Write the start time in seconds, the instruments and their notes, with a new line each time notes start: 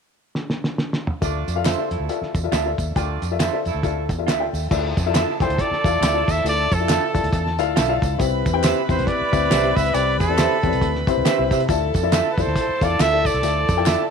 0.35 snare
0.50 snare
0.64 snare
0.78 snare
0.93 snare
1.07 mid tom
1.21 fingered electric bass D2, horn section A3 D4 F4 D5, upright piano F4 A4 D5 E5, kick, closed hi-hat, tambourine
1.48 fingered electric bass F2, closed hi-hat, tambourine
1.55 horn section A3 E4 F4 E5, upright piano F4 A4 D5 F5
1.64 horn section C4 A4 C5, clean electric guitar F4 A4 E5, snare, clap, closed hi-hat, tambourine
1.78 upright piano F4 A4 D5 E5
1.91 fingered electric bass F2, horn section F3 A3 E4 A4, closed hi-hat
2.00 fingered electric bass D2
2.09 upright piano F4 A4 D5 E5, closed hi-hat, tambourine
2.21 muted fingered electric bass stroke, snare
2.35 fingered electric bass E2, kick, closed hi-hat, tambourine
2.44 upright piano F4 A4 D5 E5
2.52 fingered electric bass D2, clean electric guitar F4 A4 E5, snare, clap, closed hi-hat, tambourine
2.66 upright piano F4 A4 D5 E5
2.78 fingered electric bass D#2, kick, closed hi-hat, tambourine
2.95 fingered electric bass D2, horn section A3 D4 F4 D5, upright piano F4 A4 D5 G5, kick, closed hi-hat, tambourine
3.22 fingered electric bass F2, closed hi-hat, tambourine
3.30 horn section A3 E4 F4 E5, upright piano F4 A4 D5 E5
3.39 horn section C4 A4 C5, clean electric guitar F4 A4 E5, snare, clap, closed hi-hat, tambourine
3.53 upright piano F4 A4 D5 E5
3.65 fingered electric bass F2, horn section F3 A3 E4 A4, closed hi-hat, tambourine
3.74 fingered electric bass D2
3.83 upright piano F4 A4 D5 E5, kick, closed hi-hat, tambourine
4.09 fingered electric bass E2, kick, closed hi-hat, tambourine
4.19 upright piano F4 A4 D5 E5
4.27 fingered electric bass D2, clean electric guitar F4 A4 E5, snare, clap, closed hi-hat, tambourine
4.40 upright piano F4 A4 D5 G5
4.53 fingered electric bass D#2, open hi-hat, tambourine
4.71 fingered electric bass D2, horn section F3 A3 E4 A4, upright piano E4 F4 A4 D5 E5, violin section A4 A5, kick, crash, tambourine
4.97 fingered electric bass F2, kick, closed hi-hat, tambourine
5.06 upright piano E4 F4 A4 D5 E5
5.14 clean electric guitar F4 A4 E5, snare, clap, closed hi-hat, tambourine
5.40 fingered electric bass F2, upright piano E4 F4 A4 D5 G5, trumpet C5, kick, snare, closed hi-hat, tambourine
5.49 fingered electric bass D2, closed hi-hat
5.58 trumpet D5, kick, closed hi-hat, tambourine
5.71 muted fingered electric bass stroke, snare
5.84 fingered electric bass E2, upright piano E4 F4 A4 D5 F5, kick, closed hi-hat, tambourine
6.01 fingered electric bass D2, clean electric guitar F4 A4 E5, snare, clap, closed hi-hat, tambourine
6.14 upright piano E4 F4 A4 D5 E5
6.28 fingered electric bass D#2, trumpet E5, kick, closed hi-hat, tambourine
6.44 fingered electric bass D2, upright piano E4 F4 A4 D5 E5, closed hi-hat, tambourine
6.49 trumpet D5
6.72 fingered electric bass F2, trumpet A4, kick, closed hi-hat, tambourine
6.80 upright piano E4 F4 A4 D5 E5
6.88 clean electric guitar F4 A4 E5, snare, clap, closed hi-hat, tambourine
7.14 fingered electric bass F2, upright piano E4 F4 A4 D5 E5, kick, closed hi-hat, tambourine
7.23 fingered electric bass D2, closed hi-hat
7.33 fingered electric bass E2, kick, closed hi-hat, tambourine
7.47 snare
7.59 fingered electric bass D2, upright piano E4 F4 A4 D5 F5, closed hi-hat, tambourine
7.76 fingered electric bass B1, clean electric guitar F4 A4 E5, snare, clap, closed hi-hat, tambourine
7.88 upright piano E4 F4 A4 D5 F5
8.02 fingered electric bass C#2, kick, closed hi-hat, tambourine
8.18 fingered electric bass C2, horn section G3 B3 E4 B4, upright piano C4 E4 G4 C5 E5, violin section B4 B5, kick, closed hi-hat, tambourine
8.46 fingered electric bass E2, kick, closed hi-hat, tambourine
8.53 upright piano C4 E4 G4 C5 G5
8.63 clean electric guitar G4 C5 E5, snare, clap, closed hi-hat, tambourine
8.88 fingered electric bass E2, upright piano C4 E4 G4 E5, trumpet C5, kick, snare, closed hi-hat, tambourine
8.99 fingered electric bass C2, snare, closed hi-hat
9.07 trumpet D5, kick, closed hi-hat
9.21 muted fingered electric bass stroke
9.32 fingered electric bass D2, upright piano C4 E4 G4 C5 E5, kick, closed hi-hat, tambourine
9.50 fingered electric bass C2, clean electric guitar G4 C5 E5, snare, clap, closed hi-hat, tambourine
9.63 upright piano C4 E4 G4 C5 E5
9.76 fingered electric bass C#2, trumpet E5, kick, closed hi-hat, tambourine
9.86 closed hi-hat
9.94 fingered electric bass C2, upright piano C4 E4 G4 C5 G5, trumpet D5, closed hi-hat, tambourine
10.20 fingered electric bass E2, trumpet A4, kick, closed hi-hat, tambourine
10.28 upright piano C4 E4 G4 C5 D5
10.38 clean electric guitar G4 C5 E5, snare, clap, closed hi-hat, tambourine
10.63 fingered electric bass E2, upright piano C4 E4 G4 C#5 E5, kick, closed hi-hat
10.68 upright piano D5
10.73 fingered electric bass C2, closed hi-hat
10.81 fingered electric bass D2, kick, closed hi-hat
10.95 snare
11.07 upright piano C4 E4 G4 C5 E5, kick, closed hi-hat, tambourine
11.17 fingered electric bass C2
11.25 clean electric guitar G4 C5 E5, snare, clap, closed hi-hat, tambourine
11.38 fingered electric bass C2, upright piano C4 E4 G4 C5 E5
11.50 fingered electric bass C3, clean electric guitar G4 C5 E5, kick, closed hi-hat, tambourine
11.60 closed hi-hat
11.68 fingered electric bass D2, horn section F3 A3 E4 A4, upright piano E4 F4 A4 D5 E5, violin section A4 A5, kick, closed hi-hat, tambourine
11.94 fingered electric bass F2, kick, closed hi-hat, tambourine
12.03 upright piano E4 F4 A4 D5 E5
12.12 clean electric guitar F4 A4 E5, snare, clap, closed hi-hat, tambourine
12.32 trumpet B4
12.38 fingered electric bass F2, upright piano E4 F4 A4 D5 E5, trumpet C5, kick, snare, closed hi-hat, tambourine
12.47 fingered electric bass D2, snare
12.56 kick, closed hi-hat, tambourine
12.69 muted fingered electric bass stroke
12.81 fingered electric bass E2, upright piano E4 F4 A4 D5 F5, trumpet D5, kick, closed hi-hat, tambourine
12.99 fingered electric bass D2, clean electric guitar F4 A4 E5, trumpet E5, snare, clap, closed hi-hat, tambourine
13.13 upright piano E4 F4 A4 D5 E5
13.25 trumpet D5, kick, open hi-hat, tambourine
13.34 fingered electric bass C2, closed hi-hat
13.43 fingered electric bass D2, upright piano E4 F4 A4 D5 E5, closed hi-hat, tambourine
13.69 fingered electric bass F2, kick, closed hi-hat, tambourine
13.77 upright piano E4 F4 A4 D5 G5
13.86 clean electric guitar F4 A4 E5, snare, clap, closed hi-hat, tambourine